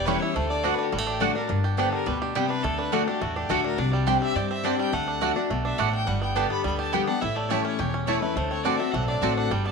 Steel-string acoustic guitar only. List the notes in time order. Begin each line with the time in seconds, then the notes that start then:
Already playing: E2
0.07 E3 G3 C#4 E4
0.36 D3
0.64 D3 A3 D4 F#4
0.92 A2
1.20 D3 A3 D4 F#4
1.35 D4 F#4
1.49 G2
1.77 D3 G3 B3 G4
2.06 B2
2.35 C3
2.64 D3
2.92 D3 A3 D4 F#4
3.07 D4 F#4
3.21 A2
3.49 D3 A3 D4 F#4
3.78 C3
4.06 G3 C4 D4 G4
4.36 G2
4.64 G3 C4 D4 G4
4.93 D3
5.21 D3 A3 D4 F#4
5.36 D4 F#4
5.51 B2
5.78 A2
6.07 G2
6.36 D3 G3 B3 G4
6.64 D3
6.93 D3 G3 B3 G4
7.07 B3 G4
7.22 A2
7.50 E3 A3 C#4 E4
7.79 E2
8.07 E3 A3 C#4 E4
8.22 C#4 E4
8.37 D3
8.65 D3 A3 C4 F#4
8.80 C4 F#4
8.94 A2
9.22 D3 A3 C4 F#4
9.51 G2